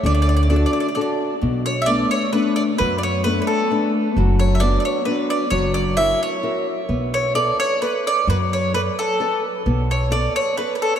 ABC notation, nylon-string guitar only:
X:1
M:3/4
L:1/8
Q:1/4=131
K:D
V:1 name="Nylon-string guitar"
D,2 [DFA]2 [DFA]2 | [K:Bm] B,,2 [A,B,D]2 [A,B,D]2 | F,2 [A,B,D]2 [A,B,D]2 | F,2 [B,DF]2 [B,DF]2 |
F,2 [EF^A]2 [EFA]2 | B,2 [ABd]2 [ABd]2 | F,2 [ABd]2 [ABd]2 | B,2 [ABd]2 [ABd]2 |]